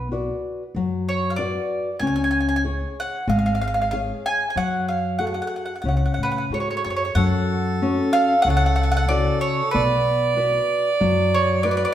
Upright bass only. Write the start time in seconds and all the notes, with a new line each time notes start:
Already playing: B1
0.75 F#2
2.00 C#2
3.27 G#1
4.56 F#2
5.84 C#2
6.18 A2
6.50 G#2
6.86 F#2
7.15 F#2
8.45 C#2
9.74 B1
11.01 F#2